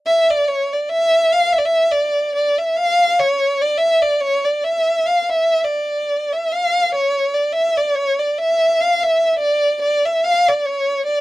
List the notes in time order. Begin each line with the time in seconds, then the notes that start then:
0.07 E5
0.30 D5
0.48 C#5
0.73 D5
0.90 E5
1.32 F5
1.52 E5
1.58 D5
1.65 E5
1.92 D5
2.36 D5
2.58 E5
2.77 F5
3.19 C#5
3.62 D5
3.78 E5
4.02 D5
4.21 C#5
4.45 D5
4.64 E5
5.07 F5
5.29 E5
5.65 D5
6.33 E5
6.52 F5
6.95 C#5
7.34 D5
7.53 E5
7.77 D5
7.95 C#5
8.19 D5
8.38 E5
8.81 F5
9.03 E5
9.39 D5
9.82 D5
10.05 E5
10.24 F5
10.49 D5
10.66 C#5
11.06 D5